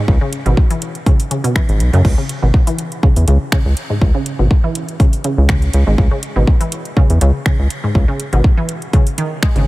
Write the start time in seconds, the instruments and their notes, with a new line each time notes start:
0.08 analog synth bass C#2, kick
0.21 synth arpeggio sound C#3
0.33 closed hi-hat
0.46 analog synth bass G#1, synth arpeggio sound B2, closed hi-hat
0.57 kick
0.70 synth arpeggio sound E3, closed hi-hat
0.82 closed hi-hat
0.95 closed hi-hat
1.06 synth arpeggio sound C#3, kick, closed hi-hat
1.20 closed hi-hat
1.31 synth arpeggio sound C#3, closed hi-hat
1.44 synth arpeggio sound B2, closed hi-hat
1.55 synth arpeggio sound E3, finger snap, kick
1.69 analog synth bass G#1, closed hi-hat
1.80 analog synth bass B1, closed hi-hat
1.93 analog synth bass F#2, synth arpeggio sound C#3, closed hi-hat
2.05 analog synth bass C#2, kick, crash
2.18 synth arpeggio sound C#3
2.29 closed hi-hat
2.42 analog synth bass G#1, synth arpeggio sound B2
2.54 kick
2.67 synth arpeggio sound E3, closed hi-hat
2.78 closed hi-hat
2.92 closed hi-hat
3.03 synth arpeggio sound C#3, kick
3.16 analog synth bass E2, closed hi-hat
3.28 analog synth bass C#2, synth arpeggio sound C#3, closed hi-hat
3.52 synth arpeggio sound C#3, finger snap, kick
3.65 analog synth bass C#2
3.77 closed hi-hat
3.90 synth arpeggio sound G#2
4.01 analog synth bass C#2, kick
4.15 synth arpeggio sound C#3
4.26 closed hi-hat
4.39 analog synth bass G#1, synth arpeggio sound B2
4.51 kick
4.64 synth arpeggio sound E3
4.75 closed hi-hat
4.89 closed hi-hat
5.00 synth arpeggio sound C#3, kick, closed hi-hat
5.13 closed hi-hat
5.24 synth arpeggio sound C#3, closed hi-hat
5.38 analog synth bass C#2
5.49 synth arpeggio sound C#3, finger snap, kick
5.62 closed hi-hat
5.73 analog synth bass C#2, closed hi-hat
5.87 analog synth bass G#1, synth arpeggio sound G#2
5.98 analog synth bass C#2, kick
6.11 synth arpeggio sound C#3
6.23 closed hi-hat
6.36 analog synth bass G#1, synth arpeggio sound B2
6.47 kick
6.61 synth arpeggio sound E3, closed hi-hat
6.72 closed hi-hat
6.85 closed hi-hat
6.97 synth arpeggio sound C#3, kick
7.10 analog synth bass E2, closed hi-hat
7.21 analog synth bass C#2, synth arpeggio sound C#3, closed hi-hat
7.46 synth arpeggio sound C#3, finger snap, kick
7.59 analog synth bass C#2
7.70 closed hi-hat
7.84 synth arpeggio sound G#2
7.95 analog synth bass C#2, kick
8.08 synth arpeggio sound C#3
8.20 closed hi-hat
8.33 analog synth bass G#1, synth arpeggio sound B2, closed hi-hat
8.44 kick
8.57 synth arpeggio sound E3
8.69 closed hi-hat
8.82 closed hi-hat
8.93 synth arpeggio sound C#3, kick, closed hi-hat
9.07 closed hi-hat
9.18 synth arpeggio sound D#3, closed hi-hat
9.43 synth arpeggio sound G#3, finger snap, kick
9.56 analog synth bass G#1, synth arpeggio sound C#3, closed hi-hat